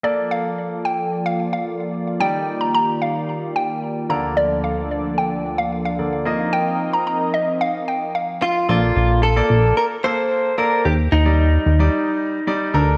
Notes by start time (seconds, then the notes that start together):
0.03 F3 A#3 F4 A4 D5
0.31 F5
0.85 G5
1.26 F5
1.53 F5
2.20 D#3 G3 D#4 G4 D5 G5
2.61 A#5
2.75 A#5
3.02 F5
3.56 G5
4.09 D2 D3 F3 A#3 D4 A4 D5 A#5
4.37 D5
4.64 F5
5.18 G5
5.58 F5
5.85 F5
5.99 D3 A#3 A4 D5
6.25 A#3 C4 D#4 F4 A#4 D#5
6.53 G5
6.93 A#5
7.07 A#5
7.34 D#5
7.61 F5
7.88 G5
8.15 F5
8.42 F4
8.69 A#1 A#3 F4 A4 D5
8.96 A#1
9.23 A4
9.36 A#3 A4 D5
9.50 A#1
9.77 A#4
10.04 A#3 A4 C5
10.58 A#3 A4 A#4 D5
10.85 D#2 G4
11.12 D#2 D#4
11.25 G3 D#4 D5
11.66 D#2
11.79 G3 D#4 D5
12.47 G3 D#4 D5
12.74 D2 D4 A4 A#4